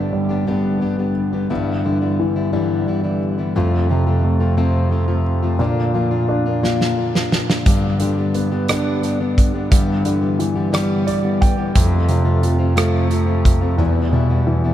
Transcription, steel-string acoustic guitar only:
Already playing: G3 B3 D4 G4
0.29 G3 B3 D4 G4
0.47 G2 D3 G3 B3 D4 G4
0.80 G3 B3 D4 G4
0.99 G3 B3 D4 G4
1.33 G3 B3 D4 G4
1.50 G2 D3 E3 G3 B3 E4
1.84 E3 G3 B3 E4
2.01 E3 G3 B3 E4
2.36 E3 G3 B3 E4
2.52 G2 D3 E3 G3 B3 E4
2.87 E3 G3 B3 E4
3.03 E3 G3 B3 E4
3.38 E3 G3 B3 E4
3.55 F2 C3 F3 A3 C4 F4
3.89 F3 A3 C4 F4
4.06 F3 A3 C4 F4
4.40 F3 A3 C4 F4
4.57 F2 C3 F3 A3 C4 F4
4.90 F3 A3 C4 F4
5.08 F3 A3 C4 F4
5.42 F3 A3 C4 F4
5.60 A#2 D3 A#3 D4 F4
5.93 D3 A#3 D4 F4
6.11 A#3 D4 F4
6.46 A#3 D4 F4
6.62 A#2 D3 A#3 D4 F4
6.96 D3 A#3 D4 F4
7.14 A#3 D4 F4
7.49 A#3 D4 F4
7.66 G2 D3 G3 B3 D4 G4
8.00 G3 B3 D4 G4
8.18 G3 B3 D4 G4
8.52 G3 B3 D4 G4
8.69 G2 D3 G3 B3 D4 G4
9.03 G3 B3 D4 G4
9.20 G3 B3 D4 G4
9.54 G3 B3 D4 G4
9.71 G2 D3 E3 G3 B3 G4
10.04 E3 G3 B3 G4
10.21 E3 G3 B3 G4
10.55 E3 G3 B3 G4
10.72 G2 D3 E3 G3 B3 G4
11.06 E3 G3 B3 G4
11.23 E3 G3 B3 G4
11.58 E3 G3 B3 G4
11.75 F2 C3 F3 A3 C4 F4
12.09 F3 A3 C4 F4
12.25 F3 A3 C4 F4
12.59 F3 A3 C4 F4
12.76 F2 C3 F3 A3 C4 F4
13.09 F3 A3 C4 F4
13.26 F3 A3 C4 F4
13.61 F3 A3 C4 F4
13.78 E2 B2 E3 G3 B3 E4
14.12 E3 G3 B3 E4
14.29 E3 G3 B3 E4
14.64 E3 G3 B3 E4

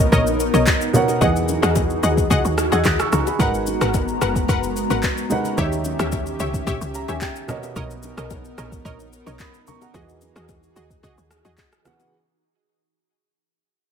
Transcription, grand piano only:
Already playing: B2 B3 A#4 C#5 D#5
0.93 B2 B3 A#4 C#5 F#5
1.21 E3 B3 G#4 D#5 F#5
2.73 E6 G#6
2.86 D#6 F#6
3.00 C#6 E6
3.13 A#5 C#6
3.27 G#5 B5
3.39 G#3 D#4 A#4 B4 F#5
5.30 G#3 D#4 A#4 B4 F#5
5.57 D#3 D#4 G4 C#5 E5
6.95 A#5
7.09 G#5
7.22 G5
7.48 B2 B3 A#4 C#5 D#5
9.41 B5 D#6
9.68 A#5 C#6
9.82 F#5 A#5
9.94 E3 B3 F#4 G#4 D#5
11.84 E3 B3 F#4 G#4 F#5

